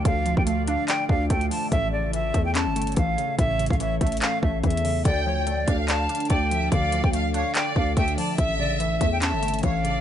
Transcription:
Already playing: ambient pad D3 A3 F4 D5, synth pluck F3 A3 D4 D5
0.05 808-style bass D2, synth pluck D3, flute F5, kick, closed hi-hat
0.26 synth pluck F3, closed hi-hat
0.37 808-style bass D2, flute G5, kick
0.47 synth pluck A3, flute F5, closed hi-hat
0.67 synth pluck D4, flute F5, closed hi-hat
0.88 synth pluck D5, flute G5, clap, closed hi-hat
1.09 808-style bass D2, synth pluck D4, flute F5, kick
1.30 808-style bass D2, synth pluck A3, flute G5, kick, closed hi-hat
1.41 closed hi-hat
1.50 synth pluck F3, flute A5, open hi-hat
1.71 808-style bass A1, synth pluck A2, ambient pad A4 C#5, flute E5, kick, closed hi-hat
1.92 synth pluck C#3, flute D5
2.13 synth pluck E3, flute E5, closed hi-hat
2.34 808-style bass E2, synth pluck A3, kick, closed hi-hat
2.45 flute G5
2.55 synth pluck C#4, flute A5, clap, closed hi-hat
2.66 808-style bass G1
2.76 synth pluck A3, closed hi-hat
2.82 closed hi-hat
2.87 closed hi-hat
2.92 closed hi-hat
2.96 808-style bass A1, synth pluck E3, flute F5, kick, closed hi-hat
3.18 synth pluck C#3, closed hi-hat
3.38 808-style bass A1, synth pluck A2, flute E5, kick, closed hi-hat
3.59 synth pluck C#3, closed hi-hat
3.66 flute F5, closed hi-hat
3.70 808-style bass A1, kick, closed hi-hat
3.80 synth pluck E3, flute E5, closed hi-hat
4.01 808-style bass A1, synth pluck A3, flute E5, kick, closed hi-hat
4.07 closed hi-hat
4.12 closed hi-hat
4.17 closed hi-hat
4.22 synth pluck C#4, flute F5, clap, closed hi-hat
4.43 808-style bass A1, synth pluck A3, flute E5, kick
4.64 808-style bass E2, synth pluck E3, flute E5, kick, closed hi-hat
4.70 closed hi-hat
4.77 closed hi-hat
4.84 synth pluck C#3, open hi-hat
5.05 808-style bass D2, synth pluck D3, ambient pad D3 D4 F5, flute D5, violin section G5, kick, closed hi-hat
5.26 synth pluck F3, flute C#5
5.47 synth pluck A3, flute D5, closed hi-hat
5.68 808-style bass D2, synth pluck D4, violin section F5, kick, closed hi-hat
5.79 flute F5
5.88 synth pluck D5, flute A5, clap, closed hi-hat
6.09 synth pluck D4, closed hi-hat
6.15 closed hi-hat
6.20 closed hi-hat
6.25 closed hi-hat
6.30 808-style bass D2, synth pluck A3, violin section D5, flute G5, kick, closed hi-hat
6.51 synth pluck F3, violin section E5, closed hi-hat
6.72 808-style bass D2, synth pluck D3, violin section D5, flute F5, kick, closed hi-hat
6.92 synth pluck F3, closed hi-hat
7.04 808-style bass D2, flute G5, kick
7.13 synth pluck A3, violin section F5, flute F5, closed hi-hat
7.34 synth pluck D4, violin section C#5, flute F5, closed hi-hat
7.55 synth pluck D5, violin section D5, flute G5, clap, closed hi-hat
7.76 808-style bass D2, synth pluck D4, flute F5, kick
7.97 808-style bass D2, synth pluck A3, violin section E5, flute G5, kick, closed hi-hat
8.08 closed hi-hat
8.17 synth pluck F3, violin section D5, flute A5, open hi-hat
8.38 808-style bass A1, synth pluck A2, ambient pad A3 A4 C#5, flute E5, violin section E5, kick, closed hi-hat
8.59 synth pluck C#3, flute D5
8.80 synth pluck E3, flute E5, closed hi-hat
9.01 808-style bass E2, synth pluck A3, violin section E5, kick, closed hi-hat
9.12 flute G5
9.22 synth pluck C#4, flute A5, clap, closed hi-hat
9.33 808-style bass G1
9.43 synth pluck A3, closed hi-hat
9.48 closed hi-hat
9.54 closed hi-hat
9.59 closed hi-hat
9.63 808-style bass A1, synth pluck E3, violin section C#5, flute F5, kick, closed hi-hat
9.84 synth pluck C#3, violin section D5, closed hi-hat

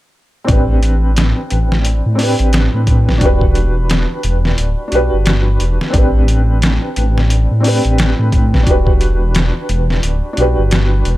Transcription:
0.44 felt piano C4 D4, closed hi-hat
0.48 detuned saw bass A1, felt piano G4 B4, kick
0.83 closed hi-hat
1.17 snare, closed hi-hat
1.50 detuned saw bass A1, closed hi-hat
1.72 snare
1.85 closed hi-hat
2.06 detuned saw bass A2
2.15 felt piano C4 D4, open hi-hat
2.21 felt piano G4 B4
2.39 detuned saw bass A1, closed hi-hat
2.53 snare, closed hi-hat
2.74 detuned saw bass A2
2.87 kick, closed hi-hat
3.09 detuned saw bass A1, snare
3.18 felt piano D4 F#4, kick, closed hi-hat
3.23 felt piano G4 B4
3.41 kick
3.55 closed hi-hat
3.90 snare, closed hi-hat
4.23 detuned saw bass E1, closed hi-hat
4.45 snare
4.58 detuned saw bass D1, closed hi-hat
4.88 felt piano D4 F#4
4.92 detuned saw bass B1, felt piano G4 B4, closed hi-hat
5.13 detuned saw bass G1
5.26 snare, closed hi-hat
5.60 detuned saw bass E1, closed hi-hat
5.81 snare
5.90 felt piano C4 D4, kick, closed hi-hat
5.94 detuned saw bass A1, felt piano G4 B4
6.28 closed hi-hat
6.62 snare, closed hi-hat
6.96 detuned saw bass A1, closed hi-hat
7.18 snare
7.30 closed hi-hat
7.51 detuned saw bass A2
7.60 felt piano C4 D4
7.64 felt piano G4 B4, open hi-hat
7.85 detuned saw bass A1, closed hi-hat
7.98 snare, closed hi-hat
8.19 detuned saw bass A2
8.32 kick, closed hi-hat
8.54 detuned saw bass A1, snare
8.63 detuned saw bass E1, felt piano D4 F#4, kick, closed hi-hat
8.68 felt piano G4 B4
8.87 kick
9.01 closed hi-hat
9.35 snare, closed hi-hat
9.69 detuned saw bass E1, closed hi-hat
9.90 snare
10.03 detuned saw bass D1, closed hi-hat
10.33 felt piano D4 F#4
10.37 detuned saw bass B1, felt piano G4 B4, closed hi-hat
10.58 detuned saw bass G1
10.71 snare, closed hi-hat
11.05 detuned saw bass E1, closed hi-hat

